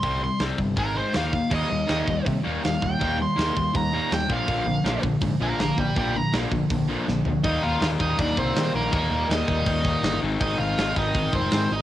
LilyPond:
<<
  \new Staff \with { instrumentName = "Overdriven electric guitar" } { \time 4/4 \key ees \major \tempo 4 = 162 c'''8 c'''8 r4 bes'8 c''8 f''4 | ees''2 r4 f''8 g''8~ | g''8 c'''4. bes''4 g''8 f''8~ | f''4. r4 <f'' bes''>8 <f'' bes''>8 <d'' g''>8 |
<d'' g''>8 bes''8 r2. | <ees' ees''>8 <f' f''>8 <f' f''>8 <ees' ees''>8 <d' d''>8 <c' c''>4 <bes bes'>8 | <bes bes'>4 <ees' ees''>2~ <ees' ees''>8 r8 | <ees' ees''>8 <f' f''>4 <ees' ees''>4 <c' c''>4 <ees' ees''>8 | }
  \new Staff \with { instrumentName = "Distorted electric guitar" } { \clef bass \time 4/4 \key ees \major r1 | <ees bes ees'>8 <ees bes>8 <ees bes ees'>8 <ees bes>8 <ees bes>8 <ees bes ees'>8 <ees bes>8 <ees bes>8 | <ees bes ees'>8 <ees bes>8 <ees bes ees'>8 <ees bes>8 <ees bes>8 <ees bes ees'>8 <ees bes>8 <bes, f bes>8 | <bes, f bes>8 <bes, f>8 <bes, f bes>8 <bes, f>8 <bes, f>8 <bes, f bes>8 <bes, f>8 <bes, f>8 |
<bes, f bes>8 <bes, f>8 <bes, f bes>8 <bes, f>8 <bes, f>8 <bes, f bes>8 <bes, f>8 <bes, f>8 | r1 | r1 | r1 | }
  \new Staff \with { instrumentName = "Distorted electric guitar" } { \clef bass \time 4/4 \key ees \major <c g c'>8 <c g>8 <c g c'>8 <c g>8 <aes, ees aes>8 <aes, ees aes>8 <ees bes ees'>8 <ees bes>8 | <ees g bes>8 <ees g>8 <ees g bes>8 <ees g>8 <ees g>8 <ees g bes>8 <ees g>8 <ees g>8 | <ees g bes>8 <ees g>8 <ees g bes>8 <ees g>8 <ees g>8 <ees g bes>8 <ees g>8 <bes, d f>8 | <bes, d f>8 <bes, d>8 <bes, d f>8 <bes, d>8 <bes, d>8 <bes, d f>8 <bes, d>8 <bes, d>8 |
<bes, d f>8 <bes, d>8 <bes, d f>8 <bes, d>8 <bes, d>8 <bes, d f>8 <bes, d>8 <bes, d>8 | <ees g bes ees'>1 | <ees g bes ees'>2.~ <ees g bes ees'>8 <aes, ees aes c' ees'>8~ | <aes, ees aes c' ees'>2.~ <aes, ees aes c' ees'>8 r8 | }
  \new Staff \with { instrumentName = "Picked electric bass" } { \clef bass \time 4/4 \key ees \major c,4 c,8 g,,8 aes,,4 ees,4 | ees,8 ees,8 ees,8 ees,8 c8 ees,8 ees,8 ees,8 | ees,4 ees,8 ees,8 ees,4 ees,8 bes,,8 | bes,,8 bes,,8 bes,,8 bes,,8 aes,8 bes,,8 bes,,8 bes,,8 |
bes,,4 bes,,8 bes,,8 bes,,4 bes,,4 | ees,8 ees,8 ees,8 ees,8 ees,8 c,8 ees8 bes,,8 | ees,8 ees,8 ees,8 ees,8 ees,4 g,,8 aes,,8 | aes,,8 aes,,8 aes,,8 aes,,8 aes,,8 f,,8 aes,8 aes,,8 | }
  \new DrumStaff \with { instrumentName = "Drums" } \drummode { \time 4/4 <hho bd>4 <hho sn>8 bd8 <hho bd>4 <hho sn>8 bd8 | <cymc bd>4 <hho sn>8 bd8 <hho bd>4 <hho sn>8 bd8 | <hho bd>4 <hho sn>8 bd8 <hho bd>4 <hho sn>8 bd8 | <hho bd>4 <hho sn>8 bd8 <hho bd>4 <hho sn>8 bd8 |
<hho bd>4 <hho sn>8 bd8 <hho bd>4 sn8 tomfh8 | <hho bd>4 <hho sn>8 bd8 <hho bd>8 bd8 <hho sn>4 | <hho bd>4 <hho sn>8 bd8 <hho bd>8 bd8 <hho sn>4 | <hho bd>4 <hho sn>8 bd8 <hho bd>8 bd8 <hho sn>4 | }
>>